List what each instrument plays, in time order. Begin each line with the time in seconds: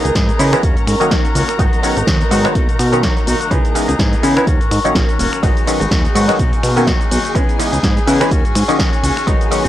Already playing: string section A#4 A#5
0.04 analog synth bass C#2, clean electric guitar B3 D#4 G#4, closed hi-hat, shaker
0.15 analog synth bass G#2, clean electric guitar E3 B3 D#4 G#4, kick, snare, closed hi-hat, shaker
0.28 clean electric guitar B3 D#4 G#4, closed hi-hat, shaker
0.38 analog synth bass C#3, clean electric guitar E3 B3 D#4 G#4, clav E3 G#3 B3 C#4 E4, open hi-hat, shaker
0.52 clav E3 G#3 B3 C#4 E4, finger snap, shaker
0.63 analog synth bass D#2, clean electric guitar A#3 C#4 F#4, kick, closed hi-hat, shaker
0.76 analog synth bass G#2, clean electric guitar C#4 F#4, closed hi-hat, shaker
0.87 analog synth bass G#2, finger snap, open hi-hat, shaker
1.00 clav D#3 F#3 A#3 C#4 D#4, clean electric guitar C#4 F#4, closed hi-hat, shaker
1.11 clean electric guitar A#3 C#4 F#4, clav A#3 C#4 D#4, kick, snare, closed hi-hat, shaker
1.24 clean electric guitar C#4 F#4, closed hi-hat, shaker
1.35 analog synth bass C#2, clean electric guitar A#3 C#4 F#4, open hi-hat, shaker
1.48 clean electric guitar C#4 F#4, finger snap, closed hi-hat, shaker
1.59 analog synth bass G#1, clav D#3 F#3 G#3 B3 D#4, clean electric guitar F#3 B3 D#4 F#4, kick, closed hi-hat, shaker
1.73 closed hi-hat, shaker
1.83 clav D#3 F#3 G#3 B3 C#4, open hi-hat, shaker
1.96 analog synth bass G#1, clean electric guitar B3 D#4 F#4, closed hi-hat, shaker
2.07 analog synth bass D#2, clean electric guitar F#3 B3 D#4 F#4, kick, snare, closed hi-hat, shaker
2.21 closed hi-hat, shaker
2.31 analog synth bass G#2, clav D#3 F#3 G#3 B3 F#4, clean electric guitar F#3 B3 D#4 F#4, open hi-hat, shaker
2.44 clav D#3 F#3 G#3 B3 F#4, finger snap, closed hi-hat, shaker
2.55 analog synth bass B1, clean electric guitar F#3 A#3 D#4 F#4, kick, closed hi-hat, shaker
2.68 analog synth bass B2, clean electric guitar A#3 D#4 F#4, closed hi-hat, shaker
2.79 analog synth bass B2, finger snap, open hi-hat, shaker
2.92 clav D#3 F#3 A#3 B3 C#4, clean electric guitar A#3 D#4 F#4, closed hi-hat, shaker
3.03 clav D#3 F#3 A#3 D#4, clean electric guitar F#3 A#3 D#4 F#4, kick, snare, closed hi-hat, shaker
3.16 clean electric guitar A#3 D#4 F#4, closed hi-hat, shaker
3.27 analog synth bass B1, clean electric guitar F#3 A#3 D#4 F#4, open hi-hat, shaker
3.40 clean electric guitar A#3 D#4 F#4, closed hi-hat, shaker
3.51 analog synth bass C#2, clav E3 G#3 B3 C#4 D#4, clean electric guitar E3 B3 D#4 G#4, kick, closed hi-hat, shaker
3.65 closed hi-hat, shaker
3.75 clav E3 G#3 B3 C#4 D#4, open hi-hat, shaker
3.88 analog synth bass C#2, clean electric guitar B3 D#4 G#4, closed hi-hat, shaker
3.99 analog synth bass G#2, clean electric guitar E3 B3 D#4 G#4, kick, snare, closed hi-hat, shaker
4.13 closed hi-hat, shaker
4.23 analog synth bass C#3, clean electric guitar E3 B3 D#4 G#4, clav E3 G#3 B3 C#4 E4, open hi-hat, shaker
4.36 clav E3 G#3 B3 C#4 E4, finger snap, shaker
4.47 analog synth bass D#2, clean electric guitar A#3 C#4 F#4, kick, closed hi-hat, shaker
4.60 analog synth bass G#2, clean electric guitar C#4 F#4, closed hi-hat, shaker
4.71 analog synth bass G#2, finger snap, open hi-hat, shaker
4.85 analog synth bass A#1, clav D#3 F#3 A#3 C#4 D#4, closed hi-hat, shaker
4.95 analog synth bass A#1, clav F#3 A#3 C#4 D#4, clean electric guitar A#3 C#4 F#4, kick, snare, closed hi-hat, shaker
5.08 clean electric guitar C#4 F#4, closed hi-hat, shaker
5.18 analog synth bass D#1, clean electric guitar A#3 C#4 F#4, open hi-hat, shaker
5.32 clean electric guitar C#4 F#4, finger snap, closed hi-hat, shaker
5.43 analog synth bass G#1, clav D#3 F#3 G#3 B3 D#4, clean electric guitar F#3 B3 D#4 F#4, string section G#4 G#5, kick, closed hi-hat, ride, shaker
5.57 closed hi-hat, shaker
5.67 clav D#3 F#3 G#3 B3 C#4, open hi-hat, ride, shaker
5.80 analog synth bass G#1, clean electric guitar B3 D#4 F#4, closed hi-hat, shaker
5.91 analog synth bass D#2, clean electric guitar F#3 B3 D#4 F#4, kick, snare, closed hi-hat, ride, shaker
6.04 clean electric guitar B3 D#4 F#4, closed hi-hat, shaker
6.14 analog synth bass G#2, clav D#3 F#3 G#3 B3 F#4, clean electric guitar F#3 B3 D#4 F#4, open hi-hat, ride, shaker
6.28 clav D#3 F#3 G#3 B3 F#4, finger snap, shaker
6.39 analog synth bass B1, clean electric guitar F#3 A#3 D#4 F#4, kick, closed hi-hat, ride, shaker
6.52 analog synth bass B2, clean electric guitar A#3 D#4 F#4, closed hi-hat, shaker
6.63 analog synth bass B2, finger snap, open hi-hat, ride, shaker
6.76 clav D#3 F#3 A#3 B3 C#4, clean electric guitar A#3 D#4 F#4, closed hi-hat, shaker
6.87 clav D#3 F#3 A#3 D#4, clean electric guitar F#3 A#3 D#4 F#4, kick, snare, closed hi-hat, ride, shaker
7.00 clean electric guitar A#3 D#4 F#4, closed hi-hat, shaker
7.10 analog synth bass B1, clean electric guitar F#3 A#3 D#4 F#4, open hi-hat, ride, shaker
7.24 clean electric guitar A#3 D#4 F#4, closed hi-hat, shaker
7.35 analog synth bass C#2, clav E3 G#3 B3 C#4 D#4, clean electric guitar E3 B3 D#4 G#4, kick, closed hi-hat, ride, shaker
7.49 closed hi-hat, shaker
7.59 clav E3 G#3 B3 C#4 D#4, open hi-hat, ride, shaker
7.72 analog synth bass C#2, clean electric guitar B3 D#4 G#4, closed hi-hat, shaker
7.83 analog synth bass G#2, clean electric guitar E3 B3 D#4 G#4, kick, snare, closed hi-hat, ride, shaker
7.96 clean electric guitar B3 D#4 G#4, closed hi-hat, shaker
8.07 analog synth bass C#3, clean electric guitar E3 B3 D#4 G#4, clav E3 G#3 B3 C#4 E4, open hi-hat, ride, shaker
8.20 clav E3 G#3 B3 C#4 E4, finger snap, closed hi-hat, shaker
8.31 analog synth bass D#2, clean electric guitar A#3 C#4 F#4, kick, closed hi-hat, ride, shaker
8.44 analog synth bass G#2, clean electric guitar C#4 F#4, closed hi-hat, shaker
8.55 analog synth bass G#2, finger snap, open hi-hat, ride, shaker
8.68 clav D#3 F#3 A#3 C#4 D#4, clean electric guitar C#4 F#4, closed hi-hat, shaker
8.79 clav D#3 F#3 A#3 C#4 D#4, clean electric guitar A#3 C#4 F#4, kick, snare, closed hi-hat, ride, shaker
8.92 clean electric guitar C#4 F#4, closed hi-hat, shaker
9.03 analog synth bass C#2, clean electric guitar A#3 C#4 F#4, open hi-hat, ride, shaker
9.16 clean electric guitar C#4 F#4, finger snap, closed hi-hat, shaker
9.27 analog synth bass G#1, clav D#3 F#3 G#3 B3 D#4, clean electric guitar F#3 B3 D#4 F#4, kick, closed hi-hat, ride, shaker
9.41 closed hi-hat, shaker
9.51 clav D#3 F#3 G#3 B3 C#4, open hi-hat, ride, shaker
9.64 analog synth bass G#1, clean electric guitar D#4 F#4, closed hi-hat